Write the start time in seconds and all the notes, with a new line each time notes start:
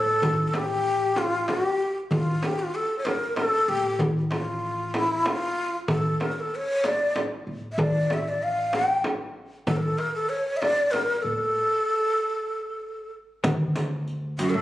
Already playing: A2 A4
0.22 A1, darbuka dum, frame drum
0.47 A4
0.54 G4, darbuka tek, frame drum
1.16 F4, darbuka tek, frame drum
1.48 G4, darbuka tek, frame drum
2.11 A1 F4, darbuka dum, frame drum
2.42 G4, darbuka tek, frame drum
2.59 F4
2.75 A4
2.99 C#5
3.05 A#4, darbuka tek, frame drum
3.36 A4, darbuka tek, frame drum
3.68 A2 G4
3.99 A1, darbuka dum, frame drum
4.31 F4, darbuka tek, frame drum
4.64 darbuka ka
4.94 E4, darbuka tek, frame drum
5.26 F4, darbuka tek, frame drum
5.57 darbuka ka
5.88 A1 A4, frame drum, darbuka dum
6.20 A#4, darbuka tek, frame drum
6.32 A#4
6.40 A4
6.55 C#5
6.84 D5, darbuka tek, frame drum
7.16 darbuka tek, frame drum
7.47 A2
7.72 E5
7.78 A1 D5, darbuka dum, frame drum
8.10 E5, darbuka tek, frame drum
8.29 D5
8.43 F5
8.73 G5, darbuka tek, frame drum
9.04 darbuka tek, frame drum
9.67 A1 A4, frame drum, darbuka dum
9.76 A#4
9.82 A4
9.98 A#4, darbuka tek
10.14 A4
10.29 C#5
10.57 E5
10.61 D5, darbuka tek, frame drum
10.91 A#4, darbuka tek, frame drum
11.22 A2 A4
13.44 D2, riq, frame drum, darbuka dum
13.76 riq, darbuka tek, frame drum
14.07 riq
14.38 F#2 F#4, riq, darbuka tek
14.50 A#4
14.54 A2 A4